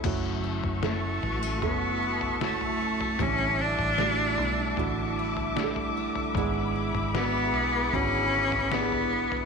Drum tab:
CC |x---------------|----------------|----------------|
SD |----o-------o---|----o-------o---|----o-------o---|
FT |o--o--o-o--o-o-o|o--o--o-o--o-o-o|o--o--o-o--o-o-o|
BD |o-------o-------|o-------o-------|o-------o-------|